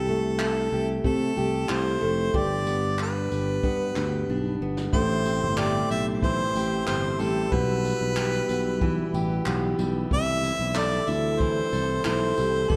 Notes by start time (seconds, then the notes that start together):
Already playing: C2 C3 G4 A4
0.09 A3
0.39 E4 A4, clap
0.72 C2 G4
1.04 C3 A3 A4, kick
1.37 C2 G4
1.69 C2 E4 C5, clap
2.01 F1 A3
2.34 G1 G2 G4 D5, kick
2.67 B3, tambourine
2.98 D4 B4, clap
3.31 G1 G4, tambourine
3.63 G2 B3, kick
3.96 D2 G4, clap, tambourine
4.29 B1 D4
4.61 G1 B3
4.77 snare
4.92 A1 A2 A3 E4 G4 C5, kick
5.26 C4, tambourine
5.42 G1
5.57 G4 D5, clap
5.90 B1 C4 E5, tambourine
6.23 E3 C5, kick
6.55 A1 G4, tambourine
6.87 G1 C4 C5, clap
7.20 A1 G3 A4, tambourine
7.52 B1 B2 G3 B3 B4, kick
7.85 B3, tambourine
8.01 B1
8.16 G4, clap
8.49 B1 B3, tambourine
8.81 E3, kick
9.14 A1 G4, tambourine
9.46 B1 B3, clap
9.79 B1 G3, tambourine
10.10 C2 A3 C4 E5, kick
10.43 E4, tambourine
10.59 B1
10.75 A4 D5, clap
11.08 D2 E4 E5, tambourine
11.40 E3 C5, kick
11.72 C2 A4, tambourine
12.05 B1 E4 C5, clap
12.37 C2 G3, tambourine
12.69 G1 G2 B3 D4 G4 A4, kick